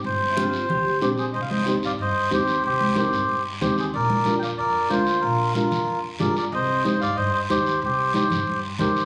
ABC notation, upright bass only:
X:1
M:4/4
L:1/8
Q:1/4=185
K:Cm
V:1 name="Upright bass" clef=bass
G,,,4 D,,2 B,,,2 | C,,3 G,, G,,2 E,,2 | C,,3 G,, G,,2 E,,2 | B,,,3 F,, F,,2 D,,2 |
B,,,3 F,, F,,2 G,,2 | C,,3 G,, G,,2 E,,2 | C,,3 G,, G,,2 E,,2 |]